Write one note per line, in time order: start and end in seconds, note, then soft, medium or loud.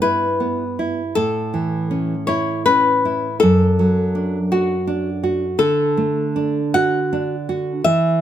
0.00 1.13 G2 soft
0.00 0.25 B3 soft
0.00 0.63 E4 soft
0.00 1.12 B4 medium
0.40 1.01 B3 soft
0.79 1.17 E4 soft
1.15 3.38 A2 soft
1.15 2.25 A4 medium
1.54 2.14 E3 soft
1.91 2.52 C#4 soft
2.27 2.90 E4 soft
2.27 2.64 C#5 medium
2.66 3.28 C#4 soft
2.66 3.37 B4 medium
3.05 3.42 E4 soft
3.40 5.55 F#2 medium
3.40 4.46 A4 medium
3.79 4.37 F#3 soft
4.15 4.73 D4 soft
4.52 4.85 F#4 medium
4.52 5.09 F#4 soft
4.87 5.44 D4 soft
5.24 5.59 F#4 soft
5.59 7.81 D3 medium
5.59 6.71 A4 medium
5.97 6.60 A3 soft
6.36 6.98 D4 soft
6.74 7.34 F#4 soft
6.74 7.81 F#5 medium
7.13 7.71 D4 soft
7.49 7.85 F#4 soft
7.84 8.21 E3 medium
7.84 8.21 E5 medium